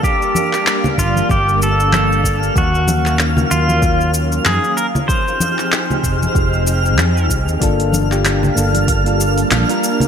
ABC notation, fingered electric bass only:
X:1
M:4/4
L:1/16
Q:"Swing 16ths" 1/4=95
K:Fdor
V:1 name="Fingered electric bass" clef=bass
z6 G,,, z G,,,6- G,,, z | E,,4- E,, z E,,4- E,, z _G,, z3 | z6 F,,, z F,,,4 F,,2 C,, E,, | G,,,4- G,,, z G,,,4- G,,, z B,,, z3 |]